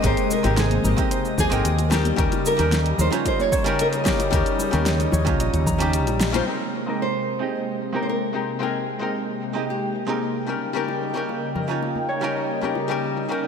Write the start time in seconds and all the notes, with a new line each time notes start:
Already playing: C3 G#3 A#3 G4 A#4 C5 D#5 D#6
0.02 G#1 G#3 C4 D#4 G4 A#4, kick, closed hi-hat, shaker
0.07 C5
0.17 closed hi-hat, shaker
0.31 A#4, shaker
0.43 G#1 G#3 C4 D#4 G4 A#4, closed hi-hat, high bongo, shaker
0.57 G#4 C5, snare, closed hi-hat, shaker
0.71 closed hi-hat, high conga
0.84 G#1 G4 A#4, high bongo, low conga, shaker
0.96 G#3 C4 D#4 G4 D#5, kick, closed hi-hat, high conga, shaker
1.11 C5, closed hi-hat, shaker
1.25 shaker
1.38 D#2 G4 G#4, kick, high bongo, low conga, shaker
1.50 G#1 G#3 C4 D#4 A#4 G5, closed hi-hat, shaker
1.65 D#2, closed hi-hat, shaker
1.79 closed hi-hat, high bongo, shaker
1.90 C#3 G3 C#4 D#4 G4 A#4, snare, shaker
2.05 closed hi-hat, high conga, shaker
2.16 D#2 G3 C#4 D#4 G4 A#4, kick, closed hi-hat, shaker
2.32 closed hi-hat, high bongo, shaker
2.46 A#4, shaker
2.57 D#2 G3 C#4 D#4 A#4, closed hi-hat, shaker
2.72 snare, closed hi-hat, high bongo, shaker
2.86 closed hi-hat
2.98 D#2 A#4 C5, low conga, shaker
3.10 G3 C#4 D#4 F4 C#5, closed hi-hat, shaker
3.25 C5, kick, closed hi-hat, high bongo, shaker
3.40 C#5, high conga, shaker
3.52 C5 C#5, kick, shaker
3.64 G3 C#4 D#4 A#4, closed hi-hat, high bongo, shaker
3.79 A#4 D#5, closed hi-hat, shaker
3.93 G#4, closed hi-hat, shaker
4.04 G3 C#4 D#4 G4 A#4, kick, snare, high conga, shaker
4.08 F4
4.19 closed hi-hat, high bongo, shaker
4.31 D#2 G3 C#4 D#4 A#4, kick, closed hi-hat, shaker
4.35 G4
4.46 closed hi-hat, shaker
4.60 high bongo, shaker
4.71 D#2 G3 C#4 D#4 A#4, closed hi-hat, shaker
4.86 D#5, snare, closed hi-hat, shaker
5.00 closed hi-hat, high conga, shaker
5.12 D#2 C#5, high bongo, low conga, shaker
5.25 G3 C#4 D#4 F4 C#5, kick, closed hi-hat, high conga, shaker
5.40 A#1 D#5, closed hi-hat, shaker
5.53 D#2, closed hi-hat, high bongo, shaker
5.66 A#5, kick, low conga, shaker
5.78 G3 C#4 D#4 G4, closed hi-hat, shaker
5.93 closed hi-hat, shaker
6.07 A#1, closed hi-hat, high bongo, shaker
6.20 snare, shaker
6.32 G3 C#4 D#4 F4 C5, closed hi-hat, high conga, shaker
6.45 C3 G#3 A#3 C4 D#4 G4 A#4 G5, shaker
6.61 shaker
6.86 G#3 C4 D#4 G4 A#4
7.02 C5
7.28 shaker
7.39 G#3 C4 D#4 G4 D#5
7.55 shaker
7.69 shaker
7.81 shaker
7.92 G#3 C4 D#4 G4 A#4
8.03 C5
8.09 A#4
8.33 G#3 C4 D#4 G4 A#4, shaker
8.48 shaker
8.59 G#3 C4 D#4 G#4 A#4 G5
8.76 shaker
8.89 shaker
8.99 G#3 C4 D#4 A#4 G5
9.15 shaker
9.42 shaker
9.53 G#3 C4 D#4 G4 D#5
9.68 G4, shaker
9.82 shaker
9.95 shaker
10.07 G#3 C4 D#4 G4 A#4
10.22 shaker
10.35 shaker
10.46 C#3 G3 C#4 D#4 A#4, shaker
10.62 shaker
10.73 G3 C#4 D#4 G4 A#4
10.88 high bongo, shaker
11.02 shaker
11.14 G3 C#4 D#4 A#4
11.29 high bongo, shaker
11.55 A#4, low conga, shaker
11.68 G3 C#4 D#4 F4 C#5, shaker
11.83 high bongo, shaker
11.96 high conga, shaker
12.09 C#5, shaker
12.21 G3 C#4 D#4 A#4, high bongo
12.36 D#5, shaker
12.50 shaker
12.61 G3 C#4 D#4 G4 A#4, high conga, shaker
12.75 high bongo, shaker
12.88 G3 C#4 D#4 A#4, shaker
13.04 shaker
13.17 high bongo, shaker
13.29 G3 C#4 D#4 A#4, shaker
13.43 D#5, shaker